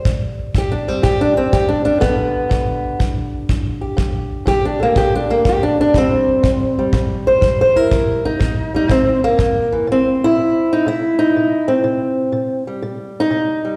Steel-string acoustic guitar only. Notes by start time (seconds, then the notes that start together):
Already playing: G3
0.06 C3
0.55 C3 G4
0.72 D4
0.88 G3 C4
1.02 C3 G4
1.21 D4
1.37 C4
1.53 C3 G4
1.69 D4
1.85 G3 D4
2.00 G2 D3 B3
2.49 G2
2.99 G2
3.49 G2
3.81 G4
3.97 G2
4.46 G2 G4
4.65 D4
4.80 D3 A#3
4.95 G2 G4
5.15 D4
5.30 A#3
5.45 G2 G4
5.63 D4
5.81 D4
5.94 C3 G3 C4
6.43 C3
6.79 G3
6.93 C3
7.27 C5
7.41 C3
7.61 C5
7.76 E4 A#4
7.91 C3
8.25 D#4
8.39 C3
8.74 G3 D#4
8.88 C3 C4
9.24 A#3
9.37 C3
9.72 E3
9.87 C3
9.92 C4
10.24 E4
10.37 C3
10.73 D#4
10.86 C3 E4
11.19 D#4
11.36 C3
11.68 C4
11.84 C3
12.32 C3
12.67 G3
12.82 C3
13.20 D#4
13.31 C3
13.65 G3